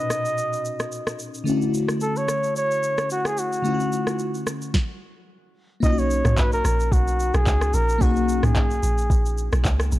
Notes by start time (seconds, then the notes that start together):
Already playing: A#2 B2 C#4 D#4 F#4 D#5
0.10 cross-stick, shaker
0.25 shaker
0.38 shaker
0.53 shaker
0.65 shaker
0.80 cross-stick, shaker
0.92 shaker
1.07 cross-stick, shaker
1.19 shaker
1.34 shaker
1.44 D3 A3 C#4, shaker
1.48 E4 F#4
1.62 shaker
1.74 shaker
1.88 cross-stick, shaker
2.01 A4, shaker
2.16 C#5, shaker
2.28 cross-stick, shaker
2.44 shaker
2.56 C#5, shaker
2.71 shaker
2.83 shaker
2.98 cross-stick, shaker
3.10 F#4, shaker
3.25 G#4, cross-stick, shaker
3.37 F#4, shaker
3.53 shaker
3.62 D3 A3 C#4, shaker
3.66 E4 F4
3.74 F#4
3.80 shaker
3.92 shaker
4.07 cross-stick, shaker
4.19 shaker
4.34 shaker
4.47 cross-stick, shaker
4.62 shaker
4.74 kick, snare
5.80 B1 A#3 C#4 D#4 D#5, kick, shaker
5.86 F4
5.92 F#4
5.98 C#5, shaker
6.10 shaker
6.25 B1, cross-stick, mid tom, shaker
6.37 B4, kick, clap, shaker
6.52 A#4, shaker
6.65 A#1, cross-stick, shaker
6.80 shaker
6.92 B1 F#4, kick, shaker
7.08 shaker
7.20 shaker
7.34 B1 G#4, cross-stick, shaker
7.46 C#2, kick, clap, shaker
7.61 cross-stick, shaker
7.74 A#1 A#4, shaker
7.89 shaker
7.98 B1 A#3 C#4 D#4 F#4, kick, shaker
8.04 G#4
8.16 shaker
8.29 shaker
8.43 B1 G#4, cross-stick, mid tom, shaker
8.55 kick, clap, shaker
8.71 shaker
8.83 A#1, shaker
8.98 shaker
9.10 A#1, kick, shaker
9.26 shaker
9.38 shaker
9.52 B1, cross-stick, shaker
9.65 C#2, kick, clap, shaker
9.80 cross-stick, shaker
9.92 A#1, shaker